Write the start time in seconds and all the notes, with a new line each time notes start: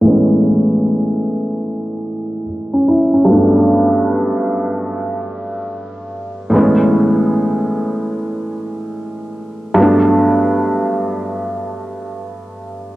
0.01 A2 E3 G#3
0.07 B3 C#4
2.74 C#4
2.88 E4
3.14 C#4
3.25 G2 F#3 A3
3.31 B3 D4
6.50 A2 E3
6.54 G#3 B3 C#4
9.74 G2 F#3
9.78 A3 B3 D4